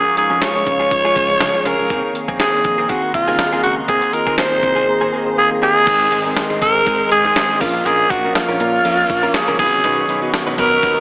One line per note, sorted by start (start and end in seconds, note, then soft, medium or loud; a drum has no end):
0.00 0.15 F3 medium
0.00 0.12 G#3 medium
0.00 0.15 G#3 medium
0.00 0.15 C#4 medium
0.00 0.15 G#4 medium
0.00 0.16 G#4 loud
0.00 5.83 G#4 medium
0.00 1.89 C#5 medium
0.00 1.86 F5 medium
0.00 1.87 C#6 medium
0.05 muted clean electric guitar stroke soft
0.16 0.52 F3 medium
0.16 0.52 G#3 medium
0.16 0.52 C#4 medium
0.16 0.52 D#4 medium
0.16 0.44 G#4 medium
0.16 muted clean electric guitar stroke soft
0.16 closed hi-hat medium
0.30 0.39 F2 medium
0.30 0.40 G#3 soft
0.30 0.40 C#4 medium
0.30 0.41 F4 medium
0.30 0.41 G#4 medium
0.41 0.62 G#3 medium
0.41 0.55 C#4 medium
0.41 0.55 F4 medium
0.41 0.54 G#4 medium
0.41 1.68 C#5 loud
0.41 snare loud
0.41 closed hi-hat medium
0.55 0.88 F3 medium
0.55 0.89 G#3 medium
0.55 0.89 C#4 medium
0.55 0.89 G#4 medium
0.55 muted clean electric guitar stroke soft
0.66 0.95 C#2 medium
0.66 muted clean electric guitar stroke soft
0.66 kick medium
0.66 closed hi-hat medium
0.80 0.90 G#3 medium
0.80 0.90 C#4 medium
0.80 0.91 F4 medium
0.80 0.91 G#4 medium
0.90 1.26 F3 medium
0.90 1.26 G#3 medium
0.90 1.27 C#4 medium
0.90 1.27 F4 medium
0.90 muted clean electric guitar stroke soft
0.90 kick medium
0.90 closed hi-hat medium
1.05 1.14 G#3 medium
1.05 1.15 C#4 medium
1.05 1.15 F4 medium
1.05 1.15 G#4 medium
1.15 1.35 C#2 medium
1.15 1.33 G#3 medium
1.15 1.29 C#4 medium
1.15 1.29 F4 medium
1.15 1.28 G#4 medium
1.15 kick medium
1.15 closed hi-hat medium
1.29 1.52 F3 medium
1.29 1.52 G#3 medium
1.29 1.52 C#4 medium
1.29 1.53 G#4 medium
1.29 muted clean electric guitar stroke soft
1.29 closed hi-hat soft
1.40 1.51 C#3 medium
1.40 muted clean electric guitar stroke soft
1.40 snare loud
1.40 closed hi-hat medium
1.53 1.87 F3 medium
1.53 1.87 G#3 medium
1.53 1.88 C#4 medium
1.53 1.88 G#4 medium
1.53 muted clean electric guitar stroke soft
1.65 1.76 C#2 medium
1.65 1.79 G#3 medium
1.65 1.78 C#4 medium
1.65 1.78 F4 medium
1.65 1.78 G#4 medium
1.65 2.16 A#4 medium
1.65 closed hi-hat medium
1.79 1.87 C#2 medium
1.79 1.90 G#3 soft
1.79 1.90 C#4 soft
1.79 1.91 F4 medium
1.79 1.90 G#4 medium
1.89 2.01 C2 medium
1.89 2.12 D#3 medium
1.89 2.11 D#3 medium
1.89 2.13 A#3 medium
1.89 2.03 A#3 medium
1.89 2.13 C4 medium
1.89 2.03 C4 medium
1.89 2.14 G#4 medium
1.89 2.02 G#4 medium
1.89 5.83 D#5 medium
1.89 5.83 A#5 medium
1.89 5.83 C6 medium
1.89 kick loud
1.89 closed hi-hat medium
2.04 muted clean electric guitar stroke soft
2.14 2.50 D#3 medium
2.14 2.50 A#3 medium
2.14 2.50 C4 medium
2.14 2.50 G#4 medium
2.14 muted clean electric guitar stroke soft
2.14 closed hi-hat medium
2.28 2.37 A#1 medium
2.28 2.38 D#3 medium
2.28 2.39 A#3 medium
2.28 2.39 C4 medium
2.28 2.40 G#4 medium
2.28 kick medium
2.39 2.60 D#3 medium
2.39 2.53 A#3 medium
2.39 2.53 C4 medium
2.39 2.91 G#4 medium
2.39 2.52 G#4 medium
2.39 snare loud
2.39 closed hi-hat loud
2.52 2.86 D#3 medium
2.52 2.86 A#3 medium
2.52 2.87 C4 medium
2.52 2.87 G#4 medium
2.52 muted clean electric guitar stroke soft
2.64 2.94 A#1 medium
2.64 muted clean electric guitar stroke soft
2.64 kick medium
2.64 closed hi-hat medium
2.78 2.88 D#3 soft
2.78 2.88 A#3 medium
2.78 2.89 C4 medium
2.78 2.89 G#4 medium
2.88 3.24 D#3 medium
2.88 3.10 D#3 medium
2.88 3.24 A#3 medium
2.88 3.03 A#3 medium
2.88 3.25 C4 medium
2.88 3.02 C4 medium
2.88 3.14 F#4 medium
2.88 3.25 G#4 medium
2.88 3.02 G#4 loud
2.88 kick medium
2.88 closed hi-hat medium
3.03 muted clean electric guitar stroke soft
3.14 3.39 C2 medium
3.14 3.60 F4 medium
3.14 muted clean electric guitar stroke soft
3.14 kick medium
3.14 closed hi-hat medium
3.27 3.50 D#3 medium
3.27 3.38 D#3 medium
3.27 3.50 A#3 medium
3.27 3.39 A#3 medium
3.27 3.51 C4 medium
3.27 3.39 C4 medium
3.27 3.51 D#4 medium
3.27 3.39 G#4 medium
3.27 closed hi-hat soft
3.39 3.58 D#2 loud
3.39 snare loud
3.39 closed hi-hat medium
3.52 3.86 D#3 medium
3.52 3.63 D#3 medium
3.52 3.86 A#3 medium
3.52 3.63 A#3 medium
3.52 3.86 C4 medium
3.52 3.64 C4 medium
3.52 3.64 G#4 medium
3.52 3.86 G#4 medium
3.63 3.82 C#2 medium
3.63 3.75 F#4 medium
3.63 muted clean electric guitar stroke soft
3.63 closed hi-hat medium
3.77 muted clean electric guitar stroke soft
3.88 3.99 C2 loud
3.88 4.12 D#3 medium
3.88 4.09 D#3 medium
3.88 4.12 A#3 medium
3.88 4.02 A#3 medium
3.88 4.12 C4 medium
3.88 4.02 C4 loud
3.88 4.15 G#4 medium
3.88 4.12 G#4 medium
3.88 4.01 G#4 medium
3.88 kick loud
3.88 closed hi-hat medium
4.02 muted clean electric guitar stroke soft
4.02 closed hi-hat medium
4.13 4.49 D#3 medium
4.13 4.49 A#3 medium
4.13 4.49 C4 medium
4.13 4.49 F4 medium
4.13 4.38 A#4 loud
4.13 muted clean electric guitar stroke soft
4.13 closed hi-hat medium
4.27 4.35 D#2 medium
4.27 4.36 D#3 soft
4.27 4.37 A#3 soft
4.27 4.38 C4 medium
4.27 4.38 G#4 medium
4.27 kick medium
4.38 4.58 D#3 medium
4.38 4.51 A#3 medium
4.38 4.51 C4 medium
4.38 4.50 G#4 medium
4.38 5.33 C5 loud
4.38 snare loud
4.38 closed hi-hat medium
4.51 4.85 D#3 medium
4.51 4.85 A#3 medium
4.51 4.85 C4 medium
4.51 4.86 G#4 medium
4.51 muted clean electric guitar stroke medium
4.62 4.82 C2 medium
4.62 muted clean electric guitar stroke soft
4.62 kick medium
4.62 closed hi-hat medium
4.76 4.86 D#3 soft
4.76 4.87 A#3 medium
4.76 4.87 C4 medium
4.76 4.87 G#4 medium
4.87 5.23 D#3 medium
4.87 5.23 A#3 medium
4.87 5.23 C4 medium
4.87 5.24 G#4 medium
4.87 muted clean electric guitar stroke soft
5.01 5.11 D#3 medium
5.01 5.12 A#3 medium
5.01 5.12 C4 medium
5.01 5.12 G#4 medium
5.12 5.30 D#3 medium
5.12 5.26 A#3 medium
5.12 5.25 C4 medium
5.12 5.25 G#4 medium
5.12 5.36 G#5 medium
5.25 5.49 D#3 medium
5.25 5.49 A#3 medium
5.25 5.49 C4 medium
5.25 5.49 G#4 medium
5.25 muted clean electric guitar stroke soft
5.37 5.49 G#4 loud
5.37 5.61 F5 medium
5.37 muted clean electric guitar stroke soft
5.51 5.85 D#3 medium
5.51 5.85 A#3 medium
5.51 5.85 C4 medium
5.51 5.85 G#4 medium
5.51 muted clean electric guitar stroke soft
5.62 5.76 D#3 medium
5.62 5.75 A#3 medium
5.62 5.75 C4 medium
5.62 6.33 G#4 loud
5.62 5.74 G#4 loud
5.62 5.85 D#5 medium
5.76 5.86 D#3 medium
5.76 5.87 A#3 medium
5.76 5.86 C4 medium
5.76 5.87 G#4 medium
5.86 6.06 G#1 loud
5.86 6.85 G#2 medium
5.86 6.22 D#3 medium
5.86 6.86 D#3 medium
5.86 6.07 G#3 medium
5.86 6.86 G#3 medium
5.86 6.07 C4 medium
5.86 6.23 C4 medium
5.86 6.08 D#4 medium
5.86 7.59 G#4 medium
5.86 6.23 G#4 medium
5.86 6.08 G#4 medium
5.86 7.59 C5 medium
5.86 7.59 D#5 medium
5.86 7.59 C6 medium
5.86 kick loud
5.86 closed hi-hat medium
5.86 crash medium
6.11 6.31 G#1 medium
6.11 6.25 G#3 medium
6.11 6.25 C4 medium
6.11 6.25 D#4 medium
6.11 6.24 G#4 medium
6.11 closed hi-hat medium
6.25 6.59 D#3 medium
6.25 6.59 G#3 medium
6.25 6.35 G#3 medium
6.25 6.59 C4 medium
6.25 6.36 C4 medium
6.25 6.36 D#4 medium
6.25 6.36 G#4 medium
6.25 6.60 G#4 loud
6.36 muted clean electric guitar stroke soft
6.36 snare loud
6.36 closed hi-hat loud
6.36 tambourine medium
6.50 6.59 G#1 medium
6.50 6.60 G#3 medium
6.50 6.60 C4 medium
6.50 6.61 D#4 medium
6.50 6.61 G#4 medium
6.61 6.80 G#2 medium
6.61 7.20 D#3 medium
6.61 6.82 G#3 medium
6.61 7.20 G#3 medium
6.61 6.75 C4 medium
6.61 7.20 C4 medium
6.61 6.74 D#4 loud
6.61 7.20 G#4 medium
6.61 6.73 G#4 medium
6.61 7.08 A#4 loud
6.61 kick medium
6.61 closed hi-hat medium
6.75 muted clean electric guitar stroke soft
6.86 7.05 G#1 loud
6.86 7.61 G#2 medium
6.86 7.61 D#3 medium
6.86 7.06 G#3 medium
6.86 7.60 G#3 medium
6.86 7.00 C4 medium
6.86 7.00 D#4 loud
6.86 6.99 G#4 medium
6.86 kick loud
6.86 closed hi-hat medium
7.00 muted clean electric guitar stroke soft
7.11 7.30 G#1 loud
7.11 7.62 G#4 loud
7.11 muted clean electric guitar stroke soft
7.11 closed hi-hat medium
7.24 7.47 D#3 medium
7.24 7.47 G#3 medium
7.24 7.41 G#3 soft
7.24 7.48 C4 medium
7.24 7.41 C4 medium
7.24 7.40 D#4 medium
7.24 7.40 G#4 medium
7.24 7.48 G#4 medium
7.36 snare loud
7.36 closed hi-hat medium
7.36 tambourine medium
7.50 7.61 D#3 medium
7.50 7.61 G#3 medium
7.50 7.61 C4 medium
7.50 7.61 G#4 medium
7.50 muted clean electric guitar stroke soft
7.61 7.79 A#1 medium
7.61 8.83 A#2 medium
7.61 8.19 F3 medium
7.61 8.84 F3 medium
7.61 8.85 A#3 medium
7.61 7.81 A#3 medium
7.61 8.19 A#3 medium
7.61 7.74 C#4 medium
7.61 8.19 C#4 medium
7.61 7.87 F4 medium
7.61 7.74 F4 medium
7.61 9.57 A#4 medium
7.61 7.73 A#4 medium
7.61 8.20 A#4 medium
7.61 9.57 C#5 medium
7.61 9.57 F5 medium
7.61 11.00 C#6 medium
7.61 kick loud
7.61 open hi-hat medium
7.75 muted clean electric guitar stroke medium
7.85 8.04 A#1 loud
7.85 8.06 A#3 medium
7.85 8.06 C#4 loud
7.85 8.06 F4 medium
7.85 8.12 G#4 loud
7.85 8.06 A#4 loud
7.85 closed hi-hat medium
8.10 8.29 A#1 loud
8.10 8.24 A#3 medium
8.10 8.24 C#4 medium
8.10 8.24 F4 medium
8.10 8.35 F#4 medium
8.10 8.23 A#4 medium
8.10 kick medium
8.10 closed hi-hat medium
8.24 8.57 F3 medium
8.24 8.58 A#3 medium
8.24 8.34 A#3 medium
8.24 8.58 C#4 medium
8.24 8.35 C#4 medium
8.24 8.35 F4 medium
8.24 8.35 A#4 medium
8.24 8.58 A#4 medium
8.35 9.36 F4 medium
8.35 muted clean electric guitar stroke soft
8.35 snare loud
8.35 closed hi-hat loud
8.35 tambourine medium
8.48 8.57 A#1 medium
8.48 8.59 A#3 medium
8.48 8.59 C#4 medium
8.48 8.60 F4 medium
8.48 8.60 A#4 medium
8.60 8.79 A#2 loud
8.60 9.18 F3 medium
8.60 8.80 A#3 medium
8.60 9.18 A#3 medium
8.60 8.73 C#4 medium
8.60 9.18 C#4 medium
8.60 8.72 F4 medium
8.60 9.19 A#4 medium
8.60 8.72 A#4 loud
8.60 closed hi-hat medium
8.73 muted clean electric guitar stroke medium
8.84 9.03 F2 loud
8.84 9.09 A#2 medium
8.84 9.10 F3 medium
8.84 9.05 A#3 medium
8.84 9.08 A#3 medium
8.84 8.98 C#4 medium
8.84 8.97 F4 medium
8.84 8.97 A#4 medium
8.84 closed hi-hat medium
8.98 muted clean electric guitar stroke medium
9.09 9.28 A#1 medium
9.09 9.60 F3 soft
9.09 9.58 A#3 medium
9.09 muted clean electric guitar stroke soft
9.09 kick medium
9.09 closed hi-hat medium
9.23 9.46 F3 medium
9.23 9.46 A#3 medium
9.23 9.33 A#3 medium
9.23 9.46 C#4 medium
9.23 9.34 C#4 medium
9.23 9.34 F4 medium
9.23 9.34 A#4 medium
9.23 9.46 A#4 medium
9.34 9.59 G#4 medium
9.34 snare loud
9.34 closed hi-hat medium
9.34 tambourine medium
9.48 9.56 C#2 medium
9.48 9.59 F3 medium
9.48 9.59 A#3 medium
9.48 9.58 C#4 medium
9.48 9.60 F4 medium
9.48 9.60 A#4 medium
9.48 9.59 A#4 medium
9.59 9.69 B1 loud
9.59 10.60 B2 medium
9.59 10.17 D#3 medium
9.59 9.76 F#3 medium
9.59 10.59 F#3 medium
9.59 10.57 B3 medium
9.59 10.17 B3 medium
9.59 11.00 B3 medium
9.59 10.18 C#4 medium
9.59 9.72 C#4 medium
9.59 9.72 D#4 medium
9.59 9.66 F4 medium
9.59 10.30 G#4 loud
9.59 9.71 B4 medium
9.59 11.00 D#5 medium
9.59 11.00 F#5 medium
9.59 kick loud
9.59 open hi-hat medium
9.66 10.21 F#4 medium
9.73 9.81 C2 medium
9.73 muted clean electric guitar stroke soft
9.84 10.02 B1 loud
9.84 10.04 F#3 medium
9.84 10.04 C#4 medium
9.84 10.04 D#4 medium
9.84 10.05 B4 loud
9.84 closed hi-hat medium
10.08 10.27 B1 medium
10.08 10.22 F#3 medium
10.08 10.21 C#4 medium
10.08 10.21 D#4 medium
10.08 10.20 B4 medium
10.08 closed hi-hat medium
10.21 10.55 D#3 medium
10.21 10.32 F#3 soft
10.21 10.56 B3 medium
10.21 10.56 C#4 medium
10.21 10.32 C#4 medium
10.21 10.32 D#4 medium
10.21 10.56 F#4 loud
10.21 10.33 B4 medium
10.33 muted clean electric guitar stroke soft
10.33 snare loud
10.33 closed hi-hat medium
10.33 tambourine medium
10.47 10.55 B1 medium
10.47 10.57 F#3 medium
10.47 10.57 C#4 medium
10.47 10.58 D#4 medium
10.47 10.58 B4 medium
10.57 10.77 B2 loud
10.57 11.00 D#3 medium
10.57 10.78 F#3 medium
10.57 10.83 F#3 soft
10.57 11.00 B3 medium
10.57 10.83 B3 medium
10.57 11.00 C#4 medium
10.57 10.72 C#4 medium
10.57 10.71 D#4 medium
10.57 11.00 F#4 medium
10.57 11.00 A#4 loud
10.57 10.71 B4 medium
10.57 kick medium
10.57 closed hi-hat medium
10.72 muted clean electric guitar stroke medium
10.83 11.00 D#2 medium
10.83 11.00 F#3 medium
10.83 11.00 B3 medium
10.83 10.97 C#4 medium
10.83 10.96 D#4 medium
10.83 10.96 B4 medium
10.83 kick medium
10.83 closed hi-hat medium
10.97 muted clean electric guitar stroke soft